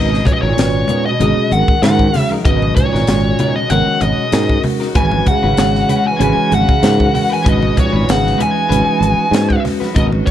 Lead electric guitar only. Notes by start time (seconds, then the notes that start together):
Already playing: D#5
0.27 C#5
0.33 D#5
0.42 C#5
1.06 D#5
1.52 F#5
1.83 F#5
2.45 D#5
2.76 C#5
3.56 D#5
3.70 F#5
4.02 D#5
4.96 G#5
5.28 F#5
6.07 G#5
6.22 G#5
6.54 F#5
7.33 G#5
7.49 D#5
7.79 C#5
8.11 F#5
8.42 G#5
9.96 D#5
10.26 C#5